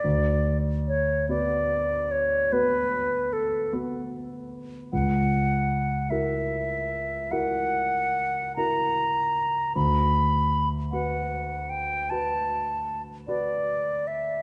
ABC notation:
X:1
M:12/8
L:1/8
Q:3/8=50
K:Bm
V:1 name="Flute"
d2 c d2 c B2 A z3 | f3 e3 f3 ^a3 | b3 f2 g a2 z d2 e |]
V:2 name="Grand piano"
D,,3 [B,FB]3 [B,FB]3 [B,FB]3 | C,,3 [EF^A]3 [EFA]3 [EFA]3 | D,,3 [FB]3 [FB]3 [FB]3 |]